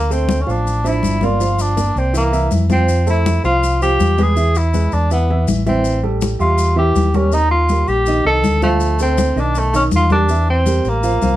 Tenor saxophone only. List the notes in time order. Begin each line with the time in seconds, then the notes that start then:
Already playing: A#3
0.12 C4
0.42 C#4
0.50 D4
0.88 E4
1.24 F4
1.61 D4
1.99 C4
2.17 A#3
2.72 C4
3.10 E4
3.45 F4
3.83 G4
4.23 G#4
4.57 E4
4.94 D4
5.13 B3
5.68 C4
6.41 F4
6.79 G4
7.16 C#4
7.34 D#4
7.51 F4
7.89 G4
8.26 A4
8.64 A3
9.02 C4
9.40 D4
9.59 A3
9.76 C#4
9.96 F4
10.12 D4
10.50 C4
10.89 A#3